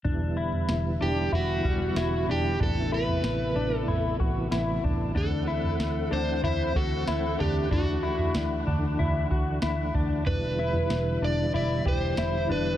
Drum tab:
SD |----o-------o---|----o-------o---|----o-------o---|----o-------o---|
FT |o--o----o-----o-|o--o----o-----o-|o--o----o-----o-|o--o--o-o-----o-|
BD |o---------o-----|o---------o---o-|o---------o-----|o---------o---o-|

SD |----o-------o---|
FT |o--o----o-----o-|
BD |o---------o-----|